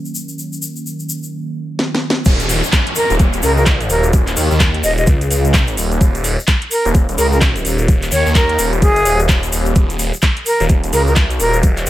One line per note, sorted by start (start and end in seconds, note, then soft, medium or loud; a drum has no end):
0.00 2.22 D#3 medium
0.00 2.22 F#3 medium
0.00 2.22 A#3 medium
0.00 2.25 C#4 medium
0.05 shaker soft
0.15 shaker medium
0.28 shaker soft
0.39 shaker soft
0.53 shaker soft
0.62 shaker medium
0.76 shaker soft
0.86 shaker soft
0.99 shaker soft
1.09 shaker medium
1.23 shaker soft
1.79 snare medium
1.95 snare medium
2.10 snare medium
2.25 2.61 D#1 loud
2.25 11.90 D#3 medium
2.25 11.90 F#3 medium
2.25 11.90 A#3 medium
2.25 6.00 F#4 medium
2.25 kick loud
2.25 closed hi-hat medium
2.25 crash loud
2.25 downlifter medium
2.25 shaker medium
2.40 closed hi-hat medium
2.40 shaker soft
2.49 open hi-hat loud
2.49 shaker medium
2.64 shaker soft
2.73 kick loud
2.73 clap loud
2.73 closed hi-hat medium
2.73 shaker soft
2.87 closed hi-hat medium
2.95 3.14 A#4 medium
2.95 open hi-hat loud
2.95 shaker medium
3.10 3.31 D#1 loud
3.10 closed hi-hat soft
3.10 shaker soft
3.19 kick loud
3.19 closed hi-hat medium
3.19 shaker soft
3.33 3.42 D#1 loud
3.33 closed hi-hat medium
3.33 shaker soft
3.42 3.88 C#2 loud
3.42 3.52 A#4 medium
3.42 open hi-hat loud
3.42 shaker loud
3.57 3.63 A#4 medium
3.57 shaker soft
3.66 kick loud
3.66 clap loud
3.66 closed hi-hat medium
3.66 shaker medium
3.81 closed hi-hat medium
3.81 shaker soft
3.90 4.35 D#1 loud
3.90 4.08 A#4 medium
3.90 open hi-hat loud
3.90 shaker medium
4.03 closed hi-hat soft
4.03 shaker soft
4.13 kick loud
4.13 closed hi-hat medium
4.13 shaker medium
4.27 clap soft
4.27 closed hi-hat soft
4.27 shaker soft
4.36 4.49 D#2 medium
4.36 open hi-hat loud
4.36 shaker loud
4.51 4.59 D#2 loud
4.51 shaker soft
4.60 4.82 D#2 loud
4.60 kick loud
4.60 clap loud
4.60 closed hi-hat medium
4.60 shaker medium
4.74 closed hi-hat medium
4.84 5.06 D#1 medium
4.84 4.93 D#5 medium
4.84 open hi-hat loud
4.84 shaker loud
4.98 5.04 D#5 medium
4.98 closed hi-hat soft
4.98 shaker soft
5.07 5.29 C#2 loud
5.07 kick loud
5.07 closed hi-hat medium
5.07 shaker medium
5.21 closed hi-hat medium
5.21 shaker soft
5.30 5.76 C#2 loud
5.30 open hi-hat loud
5.30 shaker medium
5.45 closed hi-hat soft
5.45 shaker soft
5.54 kick loud
5.54 clap loud
5.54 closed hi-hat medium
5.54 shaker medium
5.67 closed hi-hat medium
5.67 shaker soft
5.77 5.99 D#1 loud
5.77 open hi-hat loud
5.77 shaker medium
5.92 closed hi-hat soft
5.92 shaker soft
6.01 6.36 D#1 loud
6.01 9.75 C#4 medium
6.01 kick loud
6.01 closed hi-hat medium
6.01 shaker medium
6.15 closed hi-hat soft
6.15 shaker soft
6.24 open hi-hat loud
6.24 shaker medium
6.39 shaker soft
6.48 kick loud
6.48 clap loud
6.48 closed hi-hat medium
6.48 shaker medium
6.62 closed hi-hat medium
6.71 6.89 A#4 medium
6.71 open hi-hat loud
6.71 shaker medium
6.85 7.06 D#1 loud
6.85 closed hi-hat soft
6.85 shaker soft
6.94 kick loud
6.94 closed hi-hat medium
6.94 shaker medium
7.09 7.17 D#1 loud
7.09 closed hi-hat medium
7.09 shaker soft
7.18 7.63 C#2 loud
7.18 7.27 A#4 medium
7.18 open hi-hat loud
7.18 shaker loud
7.32 7.38 A#4 medium
7.32 shaker soft
7.41 kick loud
7.41 clap loud
7.41 closed hi-hat medium
7.41 shaker medium
7.56 closed hi-hat medium
7.56 shaker soft
7.65 8.10 D#1 loud
7.65 open hi-hat loud
7.65 shaker loud
7.78 closed hi-hat soft
7.78 shaker soft
7.88 kick loud
7.88 closed hi-hat medium
7.88 shaker medium
8.02 clap soft
8.02 closed hi-hat soft
8.02 shaker soft
8.11 8.24 D#2 medium
8.11 8.33 C#5 medium
8.11 open hi-hat loud
8.11 shaker loud
8.26 8.34 D#2 loud
8.26 shaker soft
8.35 8.57 D#2 loud
8.35 8.73 A#4 medium
8.35 kick loud
8.35 clap loud
8.35 closed hi-hat medium
8.35 shaker medium
8.49 closed hi-hat medium
8.59 8.81 D#1 medium
8.59 open hi-hat loud
8.59 shaker loud
8.73 closed hi-hat soft
8.73 shaker soft
8.82 9.04 F#1 loud
8.82 9.20 G#4 medium
8.82 kick loud
8.82 closed hi-hat medium
8.82 shaker medium
8.96 closed hi-hat soft
8.96 shaker soft
9.05 9.51 D#1 loud
9.05 open hi-hat loud
9.05 shaker loud
9.20 closed hi-hat soft
9.20 shaker soft
9.29 kick loud
9.29 clap loud
9.29 closed hi-hat medium
9.29 shaker medium
9.43 closed hi-hat soft
9.43 shaker soft
9.52 9.74 D#1 loud
9.52 open hi-hat loud
9.52 shaker medium
9.66 closed hi-hat soft
9.66 shaker soft
9.75 10.11 D#1 loud
9.75 11.90 F#4 medium
9.75 kick loud
9.75 closed hi-hat medium
9.75 shaker medium
9.90 closed hi-hat soft
9.90 shaker soft
9.99 open hi-hat loud
9.99 shaker medium
10.13 shaker soft
10.22 kick loud
10.22 clap loud
10.22 closed hi-hat medium
10.22 shaker medium
10.37 closed hi-hat medium
10.46 10.64 A#4 medium
10.46 open hi-hat loud
10.46 shaker medium
10.60 10.81 D#1 loud
10.60 closed hi-hat soft
10.60 shaker soft
10.69 kick loud
10.69 closed hi-hat medium
10.69 shaker soft
10.84 10.92 D#1 loud
10.84 closed hi-hat soft
10.84 shaker soft
10.93 11.38 C#2 loud
10.93 11.02 A#4 medium
10.93 open hi-hat loud
10.93 shaker medium
11.07 11.13 A#4 medium
11.07 shaker soft
11.16 kick loud
11.16 clap loud
11.16 closed hi-hat medium
11.16 shaker soft
11.30 closed hi-hat medium
11.30 shaker soft
11.40 11.85 D#1 loud
11.40 11.58 A#4 loud
11.40 open hi-hat loud
11.40 shaker medium
11.53 closed hi-hat soft
11.53 shaker soft
11.63 kick loud
11.63 closed hi-hat medium
11.63 shaker medium
11.77 clap soft
11.77 closed hi-hat soft
11.77 shaker soft
11.86 shaker medium